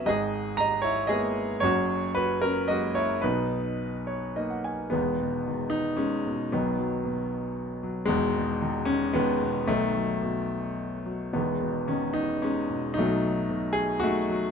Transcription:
<<
  \new Staff \with { instrumentName = "Grand piano" } { \time 3/4 \key b \major \tempo 4 = 113 << { r2. | r2. | r4. cis''8 dis''16 fis''16 gis''8 | \key e \major r2. |
r2. | r2. | r2. | r2. |
r2. | } \\ { dis''4 ais''8 cis''8 dis''4 | cis''4 b'8 ais'8 dis''8 cis''8 | b'2 r4 | b4. dis'8 cis'4 |
b2 r4 | gis4. cis'8 b4 | a2 r4 | b4 cis'8 dis'8 cis'4 |
dis'4. gis'8 fis'4 | } >> }
  \new Staff \with { instrumentName = "Grand piano" } { \clef bass \time 3/4 \key b \major << { gis'4 dis''8 e'8 gis'4 | fis'4 fis'8 cis'8 fis'8 e'8 | dis'2 r4 | \key e \major <dis gis>4. r8 gis4 |
<dis fis>2 r4 | <b, dis>4. r8 <dis gis>4 | <dis fis>2 r4 | <dis gis>4. r8 gis4 |
<fis a>4. r8 <a dis'>4 | } \\ { <gis,, gis,>2 <gis ais b>4 | <fis,, fis,>2 <fis gis ais>4 | <b,, b,>2 <ais b dis'>4 | <e,, e,>8 b,8 dis4. b,8 |
<b,, b,>8 fis8 b,4. fis8 | <e,, e,>8 b,8 dis4. b,8 | <b,, b,>8 fis8 b,4. fis8 | <e,, e,>8 b,8 dis4. b,8 |
<b,, b,>8 fis8 b,4. fis8 | } >> }
>>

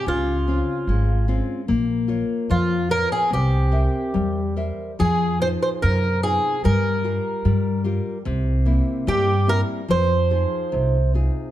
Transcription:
<<
  \new Staff \with { instrumentName = "Twelve-string acoustic guitar" } { \time 2/4 \key f \minor \tempo 4 = 73 f'4. r8 | r4 f'8 bes'16 aes'16 | g'4. r8 | aes'8 c''16 c''16 bes'8 aes'8 |
bes'4. r8 | r4 g'8 bes'8 | c''4. r8 | }
  \new Staff \with { instrumentName = "Nylon-string guitar" } { \time 2/4 \key f \minor des8 <c' des' f'>8 aes8 <c' des' f'>8 | bes8 <f' bes' des''>8 f8 <f' bes' des''>8 | c'8 <bes' c'' e''>8 g8 <bes' c'' e''>8 | f8 <ees' f' aes'>8 c8 <ees' f' aes'>8 |
g8 <f' g' bes'>8 g8 <f' g' bes'>8 | c8 <bes c' e'>8 g8 <bes c' e'>8 | f8 <ees' f' aes'>8 c8 <ees' f' aes'>8 | }
  \new Staff \with { instrumentName = "Upright bass" } { \clef bass \time 2/4 \key f \minor des,4 aes,,4 | bes,,4 f,4 | c,4 e,4 | f,4 ges,4 |
g,4 g,4 | c,4 g,4 | f,4 c,4 | }
>>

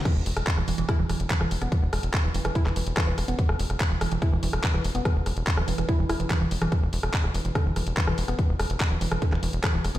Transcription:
<<
  \new Staff \with { instrumentName = "Synth arpeggio sound" } { \clef bass \time 4/4 \tempo 4 = 144 e16 r4 e16 e16 e16 e'16 e16 e16 r16 e16 e16 r16 b16 | e16 r4 e16 e16 e16 e'16 e16 e16 r16 e16 e16 r16 b16 | e16 r4 e16 e16 e16 e'16 e16 e16 r16 e16 e16 r16 b16 | e16 r4 e16 e16 e16 e'16 e16 e'16 e16 e16 e16 r16 e16 |
e16 r4 e16 e16 e16 d16 e16 e16 r16 e16 e16 r16 b16 | e16 r4 e16 e16 e16 d16 e16 e16 r16 e16 e16 r16 b16 | }
  \new Staff \with { instrumentName = "Analog synth bass" } { \clef bass \time 4/4 r16 e,,16 e,,16 e,,16 r16 e,,16 e,,16 e,,16 r16 e,,16 e,,16 e,,16 r16 e,,16 e,,16 e,,16 | r16 e,,16 e,,16 e,,16 r16 d,,16 e,,16 e,,16 r16 e,,16 e,,16 e,,16 r16 e,,16 e,,16 e,,16 | r16 e,,16 e,,16 e,,16 r16 e,,16 e,,16 e,,16 r16 e,,16 e,,16 e,,16 r16 e,,16 e,,16 e,,16 | r16 e,,16 e,,16 e,,16 r16 d,,16 e,,16 e,,16 r16 e,,16 e,,16 e,,16 r16 e,,16 e,,16 e,,16 |
r16 e,,16 e,,16 e,,16 r16 e,,16 e,,16 e,,16 r16 e,,16 e,,16 e,,16 r16 e,,16 e,,16 e,,16 | r16 e,,16 e,,16 e,,16 r16 d,,16 e,,16 e,,16 r16 e,,16 e,,16 e,,16 r16 e,,16 e,,16 e,,16 | }
  \new DrumStaff \with { instrumentName = "Drums" } \drummode { \time 4/4 <cymc hh bd ss>8 hho16 <hh ss>16 <hc hh bd>16 ss16 hho16 hh16 <hh bd ss>8 <hho ss>16 hh16 <hc hh bd>16 ss16 hho16 <hh ss>16 | <hh bd>8 <hho ss>16 hh16 <hc hh bd ss>8 hho16 <hh ss>16 <hh bd>16 <hc ss>16 hho16 hh16 <hc hh bd ss>8 <hho ss>16 hh16 | <hh bd>16 ss16 hho16 <hh ss>16 <hc hh bd>8 <hho ss>16 hh16 <hh bd ss>8 hho16 <hh ss>16 <hc hh bd>16 ss16 hho16 hh16 | <hh bd ss>8 <hho ss>16 hh16 <hc hh bd>16 ss16 hho16 <hh ss>16 <hh bd>8 <hho ss>16 hh16 <hc hh bd ss>8 hho16 <hh ss>16 |
<hh bd ss>8 hho16 <hh ss>16 <hc hh bd>16 ss16 hho16 hh16 <hh bd ss>8 <hho ss>16 hh16 <hc hh bd>16 ss16 hho16 <hh ss>16 | <hh bd>8 <hho ss>16 hh16 <hc hh bd ss>8 hho16 <hh ss>16 <hh bd>16 <hc ss>16 hho16 hh16 <hc hh bd ss>8 <hho ss>16 hh16 | }
>>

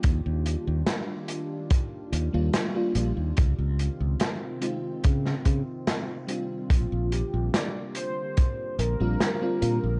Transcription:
<<
  \new Staff \with { instrumentName = "Soft synth lead" } { \time 4/4 \key bes \major \tempo 4 = 72 r1 | r1 | f'8 g'8 d''8 c''4 bes'4. | }
  \new Staff \with { instrumentName = "FM electric piano" } { \time 4/4 \key bes \major <g bes d' f'>2~ <g bes d' f'>8. <g bes d' f'>8 <g bes d' f'>16 <g bes d' f'>16 r16 | r4. <aes c' ees' f'>16 r4. r16 <g c' d' f'>8~ | <g c' d' f'>2~ <g c' d' f'>8. <g c' d' f'>8 <g c' d' f'>16 <g c' d' f'>16 r16 | }
  \new Staff \with { instrumentName = "Ambient pad" } { \time 4/4 \key bes \major <ees d' f' g'>1 | <c ees c'>1 | <d bes g'>1 | }
  \new Staff \with { instrumentName = "Fingered electric bass" } { \clef bass \time 4/4 \key bes \major ees,16 ees,16 r16 ees,16 r4. ees,16 ees,16 r8 bes,,16 ees,16 | des,16 des,16 r16 des,16 r4 des16 r16 des16 r4 r16 | bes,,16 bes,,16 r16 bes,,16 r4. bes,,16 bes,,16 r8 bes,16 bes,,16 | }
  \new DrumStaff \with { instrumentName = "Drums" } \drummode { \time 4/4 <hh bd>8 hh8 <hh sn>8 hh8 <hh bd>8 hh8 <hh sn>8 hh8 | <hh bd>8 hh8 <hh sn>8 hh8 <hh bd>16 sn16 <hh bd>8 <hh sn>8 hh8 | <hh bd>8 hh8 <hh sn>8 hh8 <hh bd>8 hh8 <hh sn>8 hh8 | }
>>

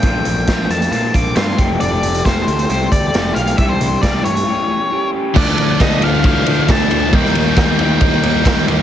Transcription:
<<
  \new Staff \with { instrumentName = "Lead electric guitar" } { \time 4/4 \key f \major \tempo 4 = 135 g''4. a''8 a''8 d'''8 c'''8. r16 | d''4 c''4 c''8 d''4 f''8 | e''16 c''8. d''8 des''2 r8 | \key d \phrygian d''4 ees''8 f''8 f''4 a''4 |
g''4. g''2 r8 | }
  \new Staff \with { instrumentName = "Clean electric guitar" } { \time 4/4 \key f \major <bes, d bes c' f'>4 <bes, d bes c' f'>4 <d bes c' f'>8 <bes c' f'>8 <d bes c' f'>8 <f a c' g'>8 | <f a c' g'>4 <f a c' g'>4 <f a c' g'>8 <a c' g'>8 <f a c' g'>8 <a c' g'>8 | <c e g d' g'>4 <c e g d' g'>4 <a, e g cis' g'>8 <g cis' g'>8 <e g cis' g'>8 <g cis' g'>8 | \key d \phrygian r1 |
r1 | }
  \new Staff \with { instrumentName = "Distorted electric guitar" } { \time 4/4 \key f \major r1 | r1 | r1 | \key d \phrygian <d f a d'>8 <f a d'>8 <d f a d'>8 <d f a d'>8 <d f a d'>8 <d f a d'>8 <d f a d'>8 <f a d'>8 |
<ees g bes ees'>8 <g bes ees'>8 <ees g bes ees'>8 <ees g bes ees'>8 <ees g bes ees'>8 <ees g bes ees'>8 <ees g bes ees'>8 <g bes ees'>8 | }
  \new Staff \with { instrumentName = "Overdriven electric guitar" } { \time 4/4 \key f \major r1 | r1 | r1 | \key d \phrygian <d f a d'>4 <d f a d'>8 <f a d'>4 <f a d'>8 <d f a d'>4 |
<ees g bes ees'>4 <ees g bes ees'>8 <g bes ees'>4 <g bes ees'>8 <ees g bes ees'>4 | }
  \new Staff \with { instrumentName = "Picked electric bass" } { \clef bass \time 4/4 \key f \major bes,,8 bes,,8 bes,,8 f,8 bes,8 bes,,8 g,8 f,,8 | f,,8 f,,8 f,,8 d,8 c,8 d,8 f,,8 b,,8 | c,8 c,8 c,8 g,8 r2 | \key d \phrygian d,8 d,8 d,8 d,8 d,8 d,8 d,8 d,8 |
ees,8 ees,8 ees,8 ees,8 ees,8 ees,8 ees,8 ees,8 | }
  \new DrumStaff \with { instrumentName = "Drums" } \drummode { \time 4/4 <hh bd>8 hh8 <hh bd sn>8 hh16 hh16 hh8 <hh bd>8 <hh sn>8 <hh bd>8 | hh8 hh16 hh16 <hh bd sn>8 hh16 hh16 hh8 <hh bd>8 <hh sn>8 hh16 hh16 | <hh bd>8 hh8 <hh bd sn>8 hh16 hh16 r4 r4 | <cymc bd>8 cymr8 <bd cymr sn>8 cymr8 <bd cymr>8 cymr8 <bd cymr sn>8 cymr8 |
<bd cymr>16 sn16 cymr8 <bd cymr sn>8 cymr8 <bd cymr>8 cymr8 <bd cymr sn>8 cymr8 | }
>>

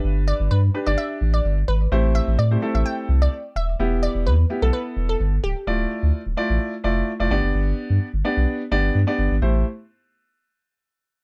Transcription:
<<
  \new Staff \with { instrumentName = "Synth pluck" } { \time 4/4 \key a \minor \tempo 4 = 128 r8 d''16 r16 b'16 r8 d''16 e''16 r8 d''16 r8 b'16 r16 | r8 e''16 r16 d''16 r8 e''16 g''16 r8 d''16 r8 e''16 r16 | r8 d''16 r16 b'16 r8 a'16 b'16 r8 a'16 r8 g'16 r16 | r1 |
r1 | r1 | }
  \new Staff \with { instrumentName = "Grand piano" } { \time 4/4 \key a \minor <d' g' b'>4 r8 <d' g' b'>16 <d' g' d''>4. r8. | <a c' e' g' c''>4 r16 <a c' e' g' c''>16 <a c' e' g' a'>4. r4 | <b e' g'>4~ <b e' g'>16 r16 <b e' g'>16 <b e' a'>4. r8. | <a e' f' d''>4~ <a e' f' d''>16 r16 <a e' f' d''>8. r16 <a e' f' d''>8 r16 <a e' f' d''>16 <b d' g' d''>8~ |
<b d' g' d''>4 r8 <b d' g' d''>8. r16 <b d' g' d''>8 r16 <b d' g' d''>8 r16 | <a e' g' c''>8 r2. r8 | }
  \new Staff \with { instrumentName = "Sub bass" } { \clef bass \time 4/4 \key a \minor g,,8. g,,16 g,8 r16 g,,16 r8 a,,8 g,,8 gis,,8 | a,,8. a,,16 a,8 r16 a,,16 r8 c,8 r8 dis,,8 | e,,8. e,,16 e,8 r16 b,,16 r8 e,,8 g,,8 cis,,16 r16 | d,,8 r16 d,16 r16 d,,16 r16 a,,16 r8 f,,8 r16 f,,16 g,,16 fis,,16 |
g,,8 r16 g,16 r16 g,,16 r16 b,,16 r8 g,,8 g,16 r16 g,,16 gis,,16 | a,,8 r2. r8 | }
>>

